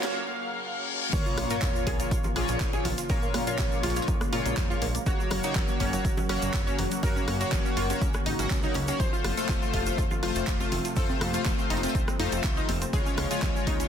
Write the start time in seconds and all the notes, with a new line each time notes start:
Already playing: C#3 F#3 A#3 F5 F6, riser
0.03 A#3 C#4 F#4 C#5, snare, closed hi-hat, high bongo
0.15 reverse cymbal
1.13 A#1 A#2 C#3 F3 A#3 F4 C#5, kick, closed hi-hat, crash, tambourine, sub drop, shaker
1.26 F4, shaker
1.38 A#1 F4, cross-stick, open hi-hat, tambourine, high bongo, high conga
1.50 A#2 A#3 F4 A#4 C#5, snare, closed hi-hat, shaker
1.62 A#1 F4, kick, snare, clap, closed hi-hat, tambourine, low conga, shaker
1.75 F4, snare, shaker
1.87 A#1 G#4, kick, open hi-hat, tambourine, high bongo, high conga
2.00 A#2 A#3 F4 C#5, closed hi-hat, shaker
2.11 A#1 F4, kick, closed hi-hat, tambourine, shaker
2.24 F4, high bongo, low conga, shaker
2.36 A#1 A#2 A#3 F4 G#4 C#5, cross-stick, open hi-hat, tambourine
2.48 A#1 F4, snare, closed hi-hat, shaker
2.60 A#1 F4, kick, snare, clap, closed hi-hat, tambourine, shaker
2.73 A#2 A#3 F4 G#4 C#5, high bongo, shaker
2.85 A#1 F4, snare, open hi-hat, tambourine, low conga
2.98 F4, snare, closed hi-hat, shaker
3.09 A#2 G#3 A#3 F4 A#4 C#5, kick, closed hi-hat, open hi-hat, high bongo, shaker
3.22 A#3, shaker
3.34 A#2 A#3, cross-stick, open hi-hat, tambourine, high conga
3.47 A#2 A#3 F4 C#5, closed hi-hat, shaker
3.58 A#1 A#3, kick, snare, clap, closed hi-hat, tambourine, high bongo, low conga, shaker
3.72 A#3, snare, shaker
3.83 A#1 F4, snare, open hi-hat, tambourine, high conga
3.90 snare, tambourine
3.96 A#2 A#3 F4 C#5, snare, closed hi-hat, tambourine, high bongo, shaker
4.02 snare, tambourine
4.08 F2 A#3, kick, closed hi-hat, tambourine, shaker
4.21 A#3, cross-stick, closed hi-hat, high conga, shaker
4.33 A#2 A#3 F4 C#5, open hi-hat, tambourine
4.46 A#1 A#3, closed hi-hat, high bongo, shaker
4.57 F2 A#3, kick, snare, clap, closed hi-hat, tambourine, shaker
4.70 A#2 A#3 F4 C#5, shaker
4.82 A#1 A#3, snare, open hi-hat, tambourine, high bongo, high conga
4.95 A#3, closed hi-hat, shaker
5.06 F#1 F#3 A#3 F#4 C#5, kick, closed hi-hat, tambourine, shaker
5.20 F#3, shaker
5.31 F#1 F#3, cross-stick, open hi-hat, tambourine, high bongo, high conga
5.43 A#3 D#4 F#4 C#5, snare, closed hi-hat, shaker
5.55 F#1 F#3, kick, snare, clap, closed hi-hat, tambourine, low conga, shaker
5.68 F#3, snare, high bongo, shaker
5.80 F#1 C#4, kick, open hi-hat, tambourine, high conga
5.93 F#3 A#3 F#4 C#5, closed hi-hat, shaker
6.05 F#1 F#3, kick, closed hi-hat, tambourine, shaker
6.17 F#3, high bongo, low conga, shaker
6.29 F#1 A#3 C#4 F#4 C#5, cross-stick, open hi-hat, tambourine
6.42 F#1 F#3, snare, closed hi-hat, shaker
6.53 F#1 F#3, kick, snare, clap, closed hi-hat, tambourine, high bongo, shaker
6.67 A#3 C#4 F#4 C#5, shaker
6.79 F#1 F#3, snare, open hi-hat, tambourine, low conga
6.91 F#3, snare, closed hi-hat, shaker
7.03 F#2 A#3 F#4 A#4 C#5, kick, closed hi-hat, open hi-hat, high bongo, shaker
7.16 C#4, shaker
7.28 F#2 C#4, cross-stick, open hi-hat, tambourine, high conga
7.41 A#3 F#4 C#5, closed hi-hat, high bongo, shaker
7.52 F#1 C#4, kick, snare, clap, closed hi-hat, tambourine, low conga, shaker
7.65 C#4, snare, shaker
7.77 F#1 F4, open hi-hat, tambourine, high conga
7.90 A#3 C#4 F#4 C#5, closed hi-hat, high bongo, shaker
8.01 C#2 C#4, kick, closed hi-hat, tambourine, shaker
8.13 C#4, cross-stick, closed hi-hat, high conga, shaker
8.26 G#1 D#4, open hi-hat, tambourine, high bongo
8.39 G#1 A#3 C#4 F#4 F#5, closed hi-hat, shaker
8.50 C#2 C#4, kick, snare, clap, closed hi-hat, tambourine, shaker
8.62 A#3 D#4 F#4 C#5, shaker
8.74 C#2 C#4, snare, open hi-hat, tambourine, high bongo, high conga
8.88 A#3 C#4 F#4 C#5, closed hi-hat, shaker
9.00 F1 C3 F3 A3 F4 C5, kick, closed hi-hat, tambourine, shaker
9.13 F4, shaker
9.24 F1 F4, cross-stick, open hi-hat, tambourine, high bongo, high conga
9.37 A3 F4 A4 C5, snare, closed hi-hat, shaker
9.49 F1 F4, kick, snare, clap, closed hi-hat, tambourine, low conga, shaker
9.62 F4, snare, shaker
9.74 F1 F4, kick, open hi-hat, tambourine, high bongo, high conga
9.86 A3 F4 C5, closed hi-hat, shaker
9.98 F1 F4, kick, closed hi-hat, tambourine, shaker
10.11 F4, high bongo, low conga, shaker
10.23 F1 A3 F4 C5, cross-stick, open hi-hat, tambourine
10.35 F1 F4, snare, closed hi-hat, shaker
10.47 F1 F4, kick, snare, clap, closed hi-hat, tambourine, shaker
10.60 A3 F4 C5, high bongo, shaker
10.72 F1 F4, snare, open hi-hat, tambourine, low conga
10.85 F4, snare, closed hi-hat, shaker
10.96 F2 A3 F4 A4 C5, kick, closed hi-hat, open hi-hat, high bongo, shaker
11.09 C4, shaker
11.21 F2 C4, cross-stick, open hi-hat, tambourine, high conga
11.34 A3 F4 C5, closed hi-hat, shaker
11.45 F1 C4, kick, snare, clap, closed hi-hat, tambourine, high bongo, low conga, shaker
11.59 C4, snare, shaker
11.70 F1 D#4, snare, open hi-hat, tambourine, high conga
11.77 snare, tambourine
11.83 A3 C4 F4 C5, snare, closed hi-hat, tambourine, high bongo, shaker
11.89 snare, tambourine
11.95 C2 C4, kick, closed hi-hat, tambourine, shaker
12.08 C4, cross-stick, closed hi-hat, high conga, shaker
12.19 F2 A3 D#4 F4 C5, open hi-hat, tambourine
12.32 F1 C4, closed hi-hat, high bongo, shaker
12.44 C2 C4, kick, snare, clap, closed hi-hat, tambourine, shaker
12.57 A3 D#4 F4 C5, shaker
12.69 F1 C4, snare, open hi-hat, tambourine, high bongo, high conga
12.82 C4, closed hi-hat, shaker
12.93 C#2 C#3 F3 G#3 F4 G#4 C#5, kick, closed hi-hat, tambourine, shaker
13.06 C#4, shaker
13.18 C#2 C#4, cross-stick, open hi-hat, tambourine, high bongo, high conga
13.31 C#3 G#3 F4 C#5, snare, closed hi-hat, shaker
13.42 C#2 C#4, kick, snare, clap, closed hi-hat, tambourine, low conga, shaker
13.55 C#4, snare, high bongo, shaker
13.67 C#2 D#4, kick, open hi-hat, tambourine, high conga
13.80 C#3 G#3 C#4 F4 C#5, closed hi-hat, shaker